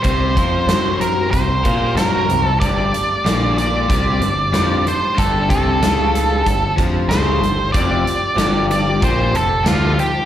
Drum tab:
HH |xxxxxxxx|xxxxxxxx|xxxxxxxx|xxxxxxxx|
SD |--o---o-|--o---o-|--o---o-|--o---o-|
BD |oo--oo--|o---o---|oo--oo--|o---o---|